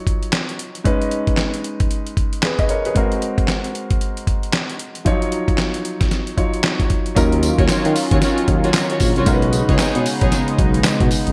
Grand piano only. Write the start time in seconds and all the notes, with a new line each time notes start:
Already playing: F#3 D#4 F4 C#5
0.84 G#3 C#4 D#4 B4
2.44 G#4 B4
2.59 B4 D#5
2.70 A#4 C#5
2.86 G#4 B4
2.95 G#3 C4 F#4 A#4
5.05 F3 D#4 F4 C#5
5.11 F#3
6.36 F#3 D#4 F4 C#5
7.15 F#3 C#4 D#4 F4 A#4
9.26 G#3 C#4 D#4 F#4 A#4
9.34 B4